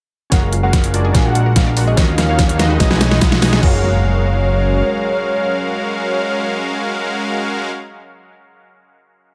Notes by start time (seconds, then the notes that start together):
0.30 F#1 F#3 G#3 C#4 F4 F#4 G#4 A#4 F5 F#5, kick, snare, closed hi-hat, riser
0.43 G#4
0.53 F4, closed hi-hat
0.63 G#3 C#4 F#4 A#4 F5 F#5
0.73 F4, kick, snare, closed hi-hat
0.84 C#5, closed hi-hat
0.94 G#3 D4 F4 F#4 A#4 D5 G#5, closed hi-hat
1.05 G#4
1.13 A#1 G#3 A#3 D4 F4 F#4 G#4 A#4, kick, snare, closed hi-hat
1.17 F5
1.25 G#3 D4 F#4 G#4 A#4 F#5
1.35 F4, closed hi-hat
1.46 A#4
1.56 G#3 D4 F4 F#4 A#4 F5, kick, snare, closed hi-hat
1.67 D5
1.77 G#3 D4 F4 F#4 A#4 F#5, open hi-hat
1.87 G#4 D#5
1.95 D#2 D#3 F#3 A#3 C#4 D#4 F4 F#4 A#4 C#5 D#5 F5, kick, snare, closed hi-hat
2.08 F#4
2.18 D#4 F5, snare, closed hi-hat
2.29 A#3 D#4 F#4 A#4 C#5 F5
2.39 D#4, kick, snare, closed hi-hat
2.49 C#5 F5, closed hi-hat
2.59 G#3 D#4 F#4 B4 D#5, snare, closed hi-hat
2.70 F#4
2.78 B1 G#3 B3 C#4 D#4 F#4 G#4 B4 D#5, kick, snare, closed hi-hat
2.82 D#5
2.91 G#3 D#4 F#4 G#4 B4 G#5, snare
3.01 D#4, snare, closed hi-hat
3.11 B4, snare
3.21 G#3 D#4 F#4 B4 F#5, kick, snare, closed hi-hat
3.32 D#5, snare
3.42 G#3 D#4 F#4 B4 G#5, snare, open hi-hat
3.53 G#4, snare
3.60 F#1 F#3 G#3 C#4 F4 F#4 G#4 A#4 C#5 F5, kick, crash, impact
3.64 A#4 F5